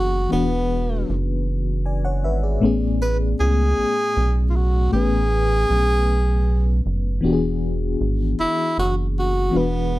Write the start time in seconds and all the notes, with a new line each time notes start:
Already playing: F#1 E3 B3 D4 F#4 G#4
0.29 E1 E3 B3 D4
0.33 F#4 B4
1.09 F#1
1.86 D5 G#5
2.05 C#5 F#5
2.24 G#1 B4 E5
2.43 G#4 D5
2.60 A1 A2 A3 B3 C#4
2.65 G#4
3.02 B4
3.40 C#2 G#4
3.78 B1
4.17 B1
4.50 F4
4.56 F#4
4.91 A1 A2 A3 B3 C#4 G#4
4.96 B4
5.70 B1
6.86 F#1
7.21 E1 E3 B3 D4 F#4
7.26 G4
7.33 G#4
8.01 G#1
8.40 F#1 E4
8.78 F#1 F#4
9.19 F#4
9.51 E1 E3 B3 D4 F#4
9.57 B3 B4